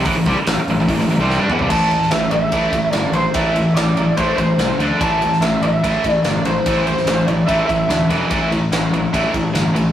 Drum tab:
CC |----------------|x---------------|----------------|----------------|
RD |----------------|--x-x-x-x-x-x-x-|x-x-x-x-x-x-x-x-|x-x-x-x-x-x-x-x-|
HH |o-o-o-o-o-o-----|----------------|----------------|----------------|
SD |----o----o--o---|---oo-------o---|----o-------o---|---oo-------o---|
T2 |--------------o-|----------------|----------------|----------------|
FT |---------------o|----------------|----------------|----------------|
BD |o-o-----o-------|o-------o-o-----|o-------o-o-----|o-------o-o-----|

CC |----------------|----------------|
RD |x-x-x-x-x-x-x-x-|x-x-x-x-x-x-x-x-|
HH |----------------|----------------|
SD |---oo-------o---|----o-------o---|
T2 |----------------|----------------|
FT |----------------|----------------|
BD |o-------o-o-----|o-------o-o-----|